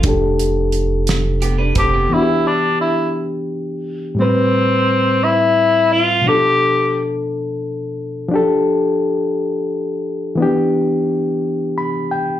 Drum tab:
HH |xxxxxx|------|------|------|
SD |---o--|------|------|------|
BD |o----o|------|------|------|

HH |------|------|
SD |------|------|
BD |------|------|